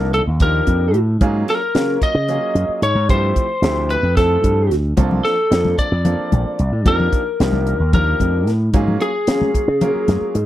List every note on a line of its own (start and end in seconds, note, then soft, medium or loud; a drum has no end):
0.00 0.20 C2 medium
0.00 0.21 F3 medium
0.00 0.22 A#3 medium
0.00 0.22 D4 medium
0.00 0.22 D#4 medium
0.00 0.22 A4 medium
0.00 0.14 A#4 medium
0.14 0.21 A4 medium
0.14 closed hi-hat medium
0.27 0.60 D#2 medium
0.40 0.92 F3 medium
0.40 0.93 A#3 medium
0.40 0.93 D4 medium
0.40 0.93 D#4 medium
0.40 0.93 G4 medium
0.40 0.98 A#4 medium
0.40 kick loud
0.40 closed hi-hat medium
0.67 0.94 F2 medium
0.67 kick medium
0.67 closed hi-hat medium
0.94 1.16 A2 medium
0.94 closed hi-hat medium
1.21 1.43 G#2 medium
1.21 1.56 F#3 medium
1.21 1.56 A#3 medium
1.21 1.56 C#4 medium
1.21 1.56 F4 medium
1.21 1.56 G#4 loud
1.21 kick loud
1.21 closed hi-hat medium
1.48 2.05 A#4 medium
1.48 snare soft
1.48 closed hi-hat medium
1.75 1.97 C#3 medium
1.75 2.10 F#3 medium
1.75 2.10 A#3 medium
1.75 2.10 C#4 medium
1.75 2.10 F4 medium
1.75 2.10 A#4 medium
1.75 snare loud
1.75 closed hi-hat medium
2.02 2.83 D#5 loud
2.02 kick medium
2.02 closed hi-hat medium
2.14 2.37 C#3 medium
2.28 2.81 F#3 medium
2.28 2.81 A#3 medium
2.28 2.81 C#4 medium
2.28 2.81 F4 medium
2.28 2.81 G#4 medium
2.28 closed hi-hat medium
2.55 2.66 F#2 medium
2.55 closed hi-hat medium
2.69 muted slap bass stroke soft
2.82 2.93 G#2 medium
2.82 3.10 C#5 medium
2.82 closed hi-hat medium
2.95 3.09 G#2 medium
3.09 3.31 G2 medium
3.09 3.44 F3 medium
3.09 3.44 A3 medium
3.09 3.44 C4 medium
3.09 3.45 E4 medium
3.09 3.45 G4 medium
3.09 3.93 C5 medium
3.09 kick loud
3.09 closed hi-hat medium
3.36 kick medium
3.36 closed hi-hat medium
3.62 3.96 D2 medium
3.62 3.98 F3 medium
3.62 3.98 A3 medium
3.62 3.98 C4 medium
3.62 3.98 E4 medium
3.62 3.98 G4 medium
3.62 snare loud
3.62 closed hi-hat medium
3.90 4.17 B4 medium
3.90 closed hi-hat medium
4.03 4.36 F2 medium
4.16 4.69 F3 medium
4.16 4.69 A3 medium
4.16 4.69 C4 medium
4.16 4.69 E4 medium
4.16 4.74 A4 medium
4.16 4.69 A4 medium
4.16 kick medium
4.16 snare soft
4.16 closed hi-hat medium
4.44 4.70 G2 medium
4.44 kick medium
4.44 closed hi-hat medium
4.70 4.93 D2 medium
4.70 snare soft
4.70 closed hi-hat medium
4.97 5.20 C2 loud
4.97 5.32 F3 medium
4.97 5.32 A#3 medium
4.97 5.32 C4 medium
4.97 5.32 D4 medium
4.97 5.32 A4 medium
4.97 kick loud
4.97 closed hi-hat medium
4.97 high conga medium
5.11 low conga medium
5.25 5.75 A4 medium
5.25 snare soft
5.25 closed hi-hat medium
5.50 5.73 F2 medium
5.50 5.85 F3 medium
5.50 5.86 A#3 medium
5.50 5.86 C4 medium
5.50 5.86 D4 medium
5.50 5.86 A4 medium
5.50 snare loud
5.50 closed hi-hat medium
5.65 high conga medium
5.65 low conga soft
5.78 6.90 D5 loud
5.78 kick medium
5.78 closed hi-hat medium
5.92 6.14 F2 medium
6.04 6.57 F3 medium
6.04 6.57 A#3 medium
6.04 6.57 C4 medium
6.04 6.57 D4 medium
6.04 6.57 A4 medium
6.04 closed hi-hat medium
6.04 low conga medium
6.19 low conga soft
6.32 6.44 A#1 medium
6.32 closed hi-hat medium
6.32 high conga medium
6.45 muted slap bass stroke soft
6.59 6.70 C2 medium
6.59 closed hi-hat medium
6.72 6.86 A2 medium
6.86 7.08 F2 medium
6.86 7.20 F3 medium
6.86 7.21 A#3 medium
6.86 7.21 D4 medium
6.86 7.21 D#4 medium
6.86 7.21 G4 medium
6.86 7.93 A#4 medium
6.86 kick loud
6.86 closed hi-hat medium
6.86 high conga medium
7.00 low conga medium
7.13 kick medium
7.13 closed hi-hat medium
7.40 7.73 C2 medium
7.40 7.75 F3 medium
7.40 7.75 A#3 medium
7.40 7.75 D4 medium
7.40 7.75 D#4 medium
7.40 7.75 G4 medium
7.40 snare loud
7.40 closed hi-hat medium
7.53 high conga medium
7.53 low conga soft
7.67 closed hi-hat medium
7.80 8.13 D#2 medium
7.93 8.45 F3 medium
7.93 8.46 A#3 medium
7.93 8.46 D4 medium
7.93 8.46 D#4 medium
7.93 8.46 G4 medium
7.93 8.51 A#4 medium
7.93 kick loud
7.93 closed hi-hat medium
7.93 low conga medium
8.07 low conga soft
8.20 8.47 F2 medium
8.20 kick medium
8.20 closed hi-hat medium
8.20 high conga medium
8.47 8.69 A2 medium
8.47 snare soft
8.47 closed hi-hat medium
8.73 8.96 G#2 loud
8.73 9.09 F#3 medium
8.73 9.09 A#3 medium
8.73 9.09 C#4 medium
8.73 9.09 F4 medium
8.73 9.09 G#4 medium
8.73 kick loud
8.73 closed hi-hat medium
8.73 high conga medium
8.88 low conga medium
9.01 10.46 G#4 medium
9.01 closed hi-hat medium
9.27 9.50 C#3 medium
9.27 9.63 F#3 medium
9.27 9.63 A#3 medium
9.27 9.63 C#4 medium
9.27 9.63 F4 medium
9.27 9.63 G#4 medium
9.27 snare loud
9.27 closed hi-hat medium
9.42 high conga medium
9.42 low conga soft
9.54 kick medium
9.54 closed hi-hat medium
9.68 9.90 C#3 medium
9.81 10.33 F#3 medium
9.81 10.33 A#3 medium
9.81 10.33 C#4 medium
9.81 10.34 F4 medium
9.81 10.34 A#4 medium
9.81 closed hi-hat medium
9.81 low conga medium
9.96 low conga soft
10.08 10.20 F#2 medium
10.08 snare soft
10.08 closed hi-hat medium
10.08 high conga medium
10.21 muted slap bass stroke soft
10.35 10.46 G#2 medium
10.35 closed hi-hat medium